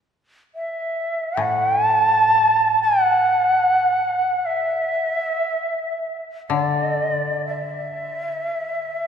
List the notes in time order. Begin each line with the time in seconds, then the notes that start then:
0.55 E5
1.37 A2
1.42 F#5
1.65 G5
1.87 A5
2.83 F#5
4.46 E5
6.50 D3 D5
7.46 E5